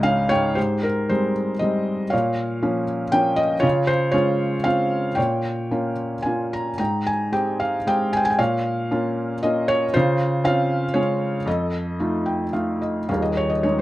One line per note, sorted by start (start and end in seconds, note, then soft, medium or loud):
0.00 0.53 C#2 medium
0.00 0.31 G#2 soft
0.00 0.54 C#3 soft
0.00 0.56 C#4 soft
0.00 0.58 F4 soft
0.00 0.59 G#4 medium
0.00 0.58 D#5 medium
0.00 0.31 F5 medium
0.29 0.57 G#2 soft
0.29 0.57 C#5 medium
0.29 0.56 G5 medium
0.55 2.09 G#2 soft
0.55 1.31 G4 soft
0.55 0.83 C5 medium
0.83 1.10 A#4 medium
1.09 1.51 G3 soft
1.09 1.52 G#3 soft
1.09 1.52 C4 soft
1.09 1.58 C5 medium
1.59 2.03 G3 soft
1.59 2.03 G#3 soft
1.59 2.03 C4 soft
1.59 2.13 D#5 medium
2.10 3.60 A#2 medium
2.10 2.83 C#5 medium
2.10 2.83 F5 medium
2.62 3.03 F3 soft
2.62 3.03 A#3 soft
2.62 3.03 C#4 soft
3.12 3.53 F3 soft
3.12 3.53 A#3 soft
3.12 3.54 C#4 medium
3.12 3.39 G5 medium
3.36 3.64 D#5 medium
3.60 5.14 C#3 medium
3.60 4.13 F4 medium
3.60 3.88 C#5 medium
3.87 4.14 C5 medium
4.12 4.55 G#3 soft
4.12 4.56 C#4 soft
4.12 4.56 F4 medium
4.12 4.66 C#5 medium
4.64 5.07 C4 soft
4.64 5.07 C#4 soft
4.64 5.08 F4 soft
4.64 5.19 F5 medium
5.15 6.76 A#2 medium
5.15 5.93 C#5 medium
5.15 5.92 G5 medium
5.71 6.14 A#3 soft
5.71 6.14 C#4 soft
5.71 6.15 F4 soft
6.22 6.70 A#3 soft
6.22 6.70 C#4 soft
6.22 6.70 F4 soft
6.22 6.52 G#5 medium
6.53 6.76 A#5 medium
6.78 8.35 G#2 soft
6.78 7.31 G5 soft
6.78 7.07 A#5 medium
7.07 7.35 G#5 medium
7.32 7.76 G#3 soft
7.32 7.76 C4 soft
7.32 7.76 G4 soft
7.32 7.61 G5 medium
7.60 7.87 F5 medium
7.87 8.28 G#3 soft
7.87 8.29 C4 soft
7.87 8.29 G4 soft
7.87 8.14 G5 medium
8.13 8.25 G5 medium
8.13 8.20 G#5 medium
8.25 8.39 G#5 medium
8.30 8.38 G5 medium
8.39 9.90 A#2 medium
8.39 9.39 C#5 medium
8.39 9.39 F5 medium
8.91 9.33 A#3 soft
8.91 9.33 C#4 soft
8.91 9.33 F4 medium
9.43 9.84 A#3 medium
9.43 9.84 C#4 soft
9.43 9.84 F4 soft
9.43 9.69 D#5 medium
9.68 9.95 C#5 medium
9.93 11.43 C#3 medium
9.93 10.43 F4 medium
9.93 10.45 C5 medium
10.44 10.84 C4 soft
10.44 10.85 C#4 soft
10.44 10.85 F4 medium
10.44 10.97 F5 medium
10.94 11.36 G#3 soft
10.94 11.36 C#4 soft
10.94 11.37 F4 soft
10.94 11.48 C#5 medium
11.46 13.05 F2 medium
11.46 12.50 A4 soft
11.46 12.50 D#5 medium
11.99 12.43 A3 soft
11.99 12.43 D#4 soft
11.99 12.43 F4 soft
12.26 12.51 G5 soft
12.53 12.98 A3 soft
12.53 12.98 D#4 soft
12.53 12.98 F4 soft
12.53 12.79 F5 soft
12.82 13.07 D#5 soft
13.09 13.82 D#1 soft
13.09 13.82 D#2 soft
13.09 13.82 G#4 soft
13.09 13.22 F5 medium
13.22 13.37 D#5 medium
13.37 13.51 C#5 medium
13.49 13.64 D#5 medium
13.63 13.82 G#3 soft
13.63 13.82 C#4 soft
13.63 13.82 D#4 soft
13.63 13.77 C#5 medium